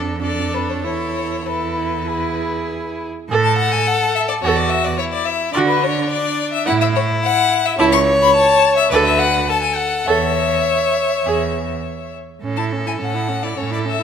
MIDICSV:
0, 0, Header, 1, 5, 480
1, 0, Start_track
1, 0, Key_signature, 3, "major"
1, 0, Tempo, 613497
1, 660, Time_signature, 4, 2, 24, 8
1, 2582, Tempo, 561272
1, 7382, Tempo, 586510
1, 10262, Tempo, 570885
1, 11606, End_track
2, 0, Start_track
2, 0, Title_t, "Violin"
2, 0, Program_c, 0, 40
2, 173, Note_on_c, 0, 74, 71
2, 424, Note_on_c, 0, 71, 61
2, 436, Note_off_c, 0, 74, 0
2, 542, Note_on_c, 0, 73, 52
2, 554, Note_off_c, 0, 71, 0
2, 656, Note_off_c, 0, 73, 0
2, 660, Note_on_c, 0, 73, 72
2, 1145, Note_on_c, 0, 71, 56
2, 1157, Note_off_c, 0, 73, 0
2, 2348, Note_off_c, 0, 71, 0
2, 2698, Note_on_c, 0, 81, 90
2, 2814, Note_off_c, 0, 81, 0
2, 2821, Note_on_c, 0, 78, 95
2, 2942, Note_on_c, 0, 80, 91
2, 2955, Note_off_c, 0, 78, 0
2, 3073, Note_on_c, 0, 78, 95
2, 3086, Note_off_c, 0, 80, 0
2, 3307, Note_off_c, 0, 78, 0
2, 3312, Note_on_c, 0, 76, 87
2, 3359, Note_off_c, 0, 76, 0
2, 3422, Note_on_c, 0, 74, 81
2, 3471, Note_off_c, 0, 74, 0
2, 3544, Note_on_c, 0, 73, 82
2, 3663, Note_on_c, 0, 74, 84
2, 3676, Note_off_c, 0, 73, 0
2, 3779, Note_on_c, 0, 76, 93
2, 3792, Note_off_c, 0, 74, 0
2, 3904, Note_on_c, 0, 74, 85
2, 3917, Note_off_c, 0, 76, 0
2, 4014, Note_off_c, 0, 74, 0
2, 4020, Note_on_c, 0, 73, 92
2, 4068, Note_off_c, 0, 73, 0
2, 4145, Note_on_c, 0, 74, 78
2, 4254, Note_on_c, 0, 76, 86
2, 4267, Note_off_c, 0, 74, 0
2, 4482, Note_off_c, 0, 76, 0
2, 4487, Note_on_c, 0, 74, 95
2, 4538, Note_off_c, 0, 74, 0
2, 4611, Note_on_c, 0, 71, 78
2, 4750, Note_on_c, 0, 73, 82
2, 4763, Note_off_c, 0, 71, 0
2, 4978, Note_off_c, 0, 73, 0
2, 4983, Note_on_c, 0, 74, 92
2, 5339, Note_off_c, 0, 74, 0
2, 5342, Note_on_c, 0, 76, 87
2, 5453, Note_off_c, 0, 76, 0
2, 5458, Note_on_c, 0, 78, 103
2, 5508, Note_off_c, 0, 78, 0
2, 5586, Note_on_c, 0, 76, 90
2, 5634, Note_off_c, 0, 76, 0
2, 5709, Note_on_c, 0, 73, 89
2, 5777, Note_off_c, 0, 73, 0
2, 5939, Note_on_c, 0, 78, 112
2, 6307, Note_on_c, 0, 76, 86
2, 6320, Note_off_c, 0, 78, 0
2, 6412, Note_off_c, 0, 76, 0
2, 6417, Note_on_c, 0, 81, 112
2, 6465, Note_off_c, 0, 81, 0
2, 6536, Note_on_c, 0, 85, 103
2, 6604, Note_off_c, 0, 85, 0
2, 6785, Note_on_c, 0, 83, 97
2, 6895, Note_off_c, 0, 83, 0
2, 6900, Note_on_c, 0, 81, 108
2, 7253, Note_off_c, 0, 81, 0
2, 7259, Note_on_c, 0, 76, 88
2, 7373, Note_off_c, 0, 76, 0
2, 7378, Note_on_c, 0, 74, 100
2, 7425, Note_off_c, 0, 74, 0
2, 7490, Note_on_c, 0, 76, 93
2, 7607, Note_on_c, 0, 78, 103
2, 7620, Note_off_c, 0, 76, 0
2, 7848, Note_off_c, 0, 78, 0
2, 7860, Note_on_c, 0, 81, 94
2, 7957, Note_off_c, 0, 81, 0
2, 7962, Note_on_c, 0, 80, 81
2, 8080, Note_on_c, 0, 78, 82
2, 8092, Note_off_c, 0, 80, 0
2, 8315, Note_on_c, 0, 76, 90
2, 8327, Note_off_c, 0, 78, 0
2, 10012, Note_off_c, 0, 76, 0
2, 10375, Note_on_c, 0, 81, 70
2, 10442, Note_off_c, 0, 81, 0
2, 10630, Note_on_c, 0, 80, 70
2, 10677, Note_off_c, 0, 80, 0
2, 10756, Note_on_c, 0, 78, 73
2, 11104, Note_on_c, 0, 74, 65
2, 11117, Note_off_c, 0, 78, 0
2, 11221, Note_on_c, 0, 73, 63
2, 11233, Note_off_c, 0, 74, 0
2, 11341, Note_off_c, 0, 73, 0
2, 11355, Note_on_c, 0, 74, 64
2, 11400, Note_off_c, 0, 74, 0
2, 11482, Note_on_c, 0, 76, 72
2, 11606, Note_off_c, 0, 76, 0
2, 11606, End_track
3, 0, Start_track
3, 0, Title_t, "Violin"
3, 0, Program_c, 1, 40
3, 0, Note_on_c, 1, 69, 57
3, 171, Note_off_c, 1, 69, 0
3, 176, Note_on_c, 1, 69, 49
3, 648, Note_off_c, 1, 69, 0
3, 658, Note_on_c, 1, 69, 49
3, 1136, Note_off_c, 1, 69, 0
3, 1148, Note_on_c, 1, 69, 46
3, 1627, Note_on_c, 1, 68, 49
3, 1638, Note_off_c, 1, 69, 0
3, 2417, Note_off_c, 1, 68, 0
3, 2583, Note_on_c, 1, 69, 92
3, 3513, Note_off_c, 1, 69, 0
3, 3553, Note_on_c, 1, 66, 78
3, 4023, Note_on_c, 1, 64, 62
3, 4036, Note_off_c, 1, 66, 0
3, 4493, Note_off_c, 1, 64, 0
3, 4498, Note_on_c, 1, 62, 80
3, 5477, Note_on_c, 1, 64, 83
3, 5490, Note_off_c, 1, 62, 0
3, 6412, Note_off_c, 1, 64, 0
3, 6417, Note_on_c, 1, 73, 97
3, 7360, Note_off_c, 1, 73, 0
3, 7382, Note_on_c, 1, 71, 90
3, 7857, Note_on_c, 1, 69, 79
3, 7870, Note_off_c, 1, 71, 0
3, 8332, Note_on_c, 1, 73, 82
3, 8344, Note_off_c, 1, 69, 0
3, 10020, Note_off_c, 1, 73, 0
3, 10269, Note_on_c, 1, 69, 61
3, 11193, Note_off_c, 1, 69, 0
3, 11224, Note_on_c, 1, 69, 63
3, 11606, Note_off_c, 1, 69, 0
3, 11606, End_track
4, 0, Start_track
4, 0, Title_t, "Viola"
4, 0, Program_c, 2, 41
4, 0, Note_on_c, 2, 62, 54
4, 164, Note_off_c, 2, 62, 0
4, 169, Note_on_c, 2, 62, 50
4, 653, Note_on_c, 2, 64, 48
4, 665, Note_off_c, 2, 62, 0
4, 1133, Note_off_c, 2, 64, 0
4, 1138, Note_on_c, 2, 64, 49
4, 1618, Note_off_c, 2, 64, 0
4, 1624, Note_on_c, 2, 64, 47
4, 2400, Note_off_c, 2, 64, 0
4, 2593, Note_on_c, 2, 69, 68
4, 2815, Note_off_c, 2, 69, 0
4, 3560, Note_on_c, 2, 69, 68
4, 3774, Note_off_c, 2, 69, 0
4, 4497, Note_on_c, 2, 66, 70
4, 4723, Note_off_c, 2, 66, 0
4, 5453, Note_on_c, 2, 64, 67
4, 5681, Note_off_c, 2, 64, 0
4, 6422, Note_on_c, 2, 64, 78
4, 6642, Note_off_c, 2, 64, 0
4, 7392, Note_on_c, 2, 69, 75
4, 7605, Note_off_c, 2, 69, 0
4, 8334, Note_on_c, 2, 69, 64
4, 8551, Note_off_c, 2, 69, 0
4, 9300, Note_on_c, 2, 68, 52
4, 9520, Note_off_c, 2, 68, 0
4, 10268, Note_on_c, 2, 61, 48
4, 10384, Note_on_c, 2, 64, 43
4, 10396, Note_off_c, 2, 61, 0
4, 10507, Note_on_c, 2, 61, 43
4, 10519, Note_off_c, 2, 64, 0
4, 10622, Note_on_c, 2, 64, 44
4, 10634, Note_off_c, 2, 61, 0
4, 10743, Note_off_c, 2, 64, 0
4, 10748, Note_on_c, 2, 61, 46
4, 10855, Note_on_c, 2, 64, 44
4, 10868, Note_off_c, 2, 61, 0
4, 10980, Note_on_c, 2, 61, 43
4, 10993, Note_off_c, 2, 64, 0
4, 11104, Note_on_c, 2, 64, 42
4, 11117, Note_off_c, 2, 61, 0
4, 11220, Note_off_c, 2, 64, 0
4, 11225, Note_on_c, 2, 61, 43
4, 11335, Note_on_c, 2, 64, 46
4, 11347, Note_off_c, 2, 61, 0
4, 11451, Note_on_c, 2, 61, 43
4, 11464, Note_off_c, 2, 64, 0
4, 11575, Note_on_c, 2, 64, 44
4, 11587, Note_off_c, 2, 61, 0
4, 11606, Note_off_c, 2, 64, 0
4, 11606, End_track
5, 0, Start_track
5, 0, Title_t, "Cello"
5, 0, Program_c, 3, 42
5, 0, Note_on_c, 3, 41, 62
5, 654, Note_on_c, 3, 40, 52
5, 665, Note_off_c, 3, 41, 0
5, 2417, Note_off_c, 3, 40, 0
5, 2575, Note_on_c, 3, 45, 80
5, 2985, Note_off_c, 3, 45, 0
5, 3543, Note_on_c, 3, 40, 77
5, 3940, Note_off_c, 3, 40, 0
5, 4491, Note_on_c, 3, 50, 75
5, 4899, Note_off_c, 3, 50, 0
5, 5468, Note_on_c, 3, 45, 78
5, 5864, Note_off_c, 3, 45, 0
5, 6416, Note_on_c, 3, 37, 85
5, 6814, Note_off_c, 3, 37, 0
5, 7375, Note_on_c, 3, 38, 83
5, 7771, Note_off_c, 3, 38, 0
5, 8319, Note_on_c, 3, 40, 68
5, 8721, Note_off_c, 3, 40, 0
5, 9284, Note_on_c, 3, 40, 63
5, 9689, Note_off_c, 3, 40, 0
5, 10250, Note_on_c, 3, 45, 62
5, 10682, Note_off_c, 3, 45, 0
5, 10736, Note_on_c, 3, 45, 59
5, 11161, Note_off_c, 3, 45, 0
5, 11222, Note_on_c, 3, 45, 59
5, 11606, Note_off_c, 3, 45, 0
5, 11606, End_track
0, 0, End_of_file